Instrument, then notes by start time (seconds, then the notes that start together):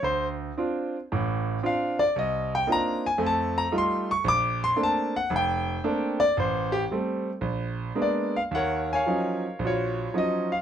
grand piano
0.03 D2 C5
0.57 C4 D4 F4
1.12 A1 A2
1.63 C4 D4 F4 F5
1.99 D5
2.16 C2 D#5
2.55 G5
2.67 A#3 C4 D4 D#4 F4
2.72 A#5
3.06 G#5
3.18 F2 A3
3.23 G#5 A5
3.58 A#5
3.72 G3 A3 D#4 F4
3.78 C6
4.11 C#6
4.24 A#1
4.28 D6
4.64 C6
4.76 A3 A#3 C4 D4
4.83 A5
5.16 F#5
5.30 F1
5.36 G5
5.84 A3 A#3 C4 D4
6.20 D5
6.37 A1 C5
6.72 G4
6.91 G3 A3 C4
7.41 A#1
7.95 G#3 A#3 B3 D4
8.02 D5
8.36 F5
8.51 D#2 F#5
8.56 A#4 C#5
8.93 C#5 F5 G#5
9.06 F3 F#3 C#4 D#4
9.59 A#1
9.65 F4 F#4 C#5
10.14 F3 F#3 C#4 D#4
10.18 D#5
10.52 F5